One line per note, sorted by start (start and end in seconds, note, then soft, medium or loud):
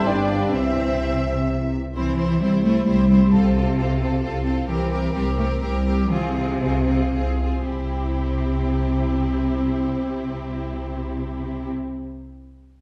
0.00 0.22 C5 medium
0.06 0.52 G1 soft
0.06 0.52 G2 soft
0.06 0.55 G3 soft
0.06 0.54 B3 soft
0.06 0.54 D4 medium
0.06 0.53 G4 soft
0.06 0.55 B4 soft
0.06 0.54 B4 soft
0.06 0.54 D5 medium
0.06 0.31 G5 soft
0.30 0.53 F5 soft
0.53 1.73 C2 soft
0.53 1.73 C3 soft
0.53 1.72 E3 soft
0.53 1.49 C4 medium
0.53 1.73 C4 soft
0.53 1.70 E4 soft
0.53 1.49 C5 soft
0.53 1.73 C5 soft
0.53 1.70 E5 soft
0.53 1.76 E5 soft
0.53 1.69 E5 soft
1.96 2.36 C2 soft
1.96 2.38 E3 medium
1.96 2.17 C4 soft
1.96 2.16 E4 soft
1.96 2.17 C5 soft
2.17 2.41 C4 soft
2.17 2.39 E4 soft
2.17 2.40 C5 soft
2.41 2.82 C2 soft
2.41 2.64 G3 medium
2.41 2.64 C4 soft
2.41 2.63 E4 soft
2.41 2.63 C5 soft
2.64 2.87 A3 medium
2.64 2.87 C4 soft
2.64 2.86 E4 soft
2.64 2.85 C5 soft
2.87 3.28 C2 soft
2.87 3.32 G3 medium
2.87 3.10 C4 soft
2.87 3.09 E4 soft
2.87 3.09 C5 soft
3.10 3.33 C4 soft
3.10 3.32 E4 soft
3.10 3.33 C5 soft
3.33 3.73 C2 soft
3.33 4.45 C3 medium
3.33 3.56 C4 soft
3.33 3.55 F4 soft
3.33 3.54 A4 soft
3.55 3.77 C4 soft
3.55 3.77 F4 soft
3.55 3.76 A4 soft
3.77 4.17 C2 soft
3.77 4.00 C4 soft
3.77 4.00 F4 soft
3.77 3.98 A4 soft
4.00 4.22 C4 soft
4.00 4.22 F4 soft
4.00 4.21 A4 soft
4.22 4.63 C2 medium
4.22 4.44 C4 soft
4.22 4.44 F4 soft
4.22 4.43 A4 soft
4.44 4.68 C4 soft
4.44 4.68 F4 soft
4.44 4.67 A4 soft
4.67 5.09 C2 soft
4.67 5.11 E3 medium
4.67 4.91 C4 soft
4.67 4.91 G4 soft
4.67 4.89 A#4 soft
4.91 5.13 C4 soft
4.91 5.14 G4 soft
4.91 5.13 A#4 soft
5.14 5.56 C2 soft
5.14 5.23 G3 medium
5.14 5.37 C4 soft
5.14 5.37 G4 soft
5.14 5.36 A#4 soft
5.37 5.46 A3 medium
5.37 5.60 C4 soft
5.37 5.61 G4 soft
5.37 5.61 A#4 soft
5.61 6.04 C2 medium
5.61 6.09 G3 medium
5.61 5.84 C4 soft
5.61 5.85 G4 soft
5.61 5.84 A#4 soft
5.85 6.09 C4 soft
5.85 6.10 G4 soft
5.85 6.09 A#4 soft
6.10 6.54 C2 soft
6.10 7.41 C3 medium
6.10 6.34 C4 soft
6.10 6.35 F4 soft
6.10 6.33 G#4 soft
6.34 6.60 C4 soft
6.34 6.60 F4 soft
6.34 6.59 G#4 soft
6.60 7.07 C2 soft
6.60 6.86 C4 soft
6.60 6.86 F4 soft
6.60 6.86 G#4 soft
6.87 7.12 C4 soft
6.87 7.13 F4 soft
6.87 7.11 G#4 soft
7.13 7.62 C2 soft
7.13 7.40 C4 soft
7.13 7.41 F4 soft
7.13 7.39 G#4 soft
7.40 7.67 C4 soft
7.40 7.69 F4 soft
7.40 7.68 G#4 soft
7.68 11.70 C2 soft
7.68 11.69 C3 soft
7.68 11.69 C4 soft
7.68 11.70 E4 soft
7.68 11.68 G4 soft